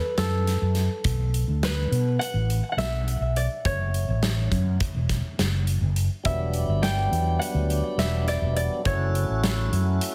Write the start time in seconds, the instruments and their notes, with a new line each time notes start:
Already playing: harp A4 B4
0.17 fretless electric bass F#2, harp A4, snare, closed hi-hat
0.47 snare, closed hi-hat
0.61 fretless electric bass F#2
0.75 snare, closed hi-hat
1.04 fretless electric bass B1, kick, closed hi-hat
1.34 closed hi-hat
1.48 fretless electric bass D2
1.63 harp B4, snare, closed hi-hat
1.91 fretless electric bass B2, closed hi-hat
2.19 harp F#5, closed hi-hat
2.34 fretless electric bass A1
2.50 closed hi-hat
2.72 harp F#5
2.77 fretless electric bass B1, harp E5, snare, closed hi-hat
3.08 closed hi-hat
3.20 fretless electric bass B1
3.36 harp D5, closed hi-hat
3.65 fretless electric bass F#1, harp C#5, kick, closed hi-hat
3.94 closed hi-hat
4.08 fretless electric bass A1
4.23 snare, closed hi-hat
4.51 fretless electric bass F#2, kick, closed hi-hat
4.80 kick, closed hi-hat
4.94 fretless electric bass E1
5.09 kick, snare, closed hi-hat
5.38 fretless electric bass F#1, snare, closed hi-hat
5.67 closed hi-hat
5.81 fretless electric bass F#1
5.96 closed hi-hat
6.23 fretless electric bass E1, tonewheel organ G3 B3 D4, harp E5, kick, closed hi-hat
6.28 tonewheel organ F#3
6.54 closed hi-hat
6.68 fretless electric bass G1
6.82 harp G5, snare, closed hi-hat
7.11 fretless electric bass E2, closed hi-hat
7.39 harp F#5, closed hi-hat
7.54 fretless electric bass D2
7.70 closed hi-hat
7.97 fretless electric bass E1, harp E5, snare, closed hi-hat
8.28 harp D5, snare, closed hi-hat
8.41 fretless electric bass E1
8.56 harp D5, closed hi-hat
8.83 fretless electric bass F#1, tonewheel organ A3 C#4 E4 F#4, harp C#5, kick, closed hi-hat
9.15 closed hi-hat
9.29 fretless electric bass A1
9.44 snare, closed hi-hat
9.72 fretless electric bass F#2, closed hi-hat
10.01 closed hi-hat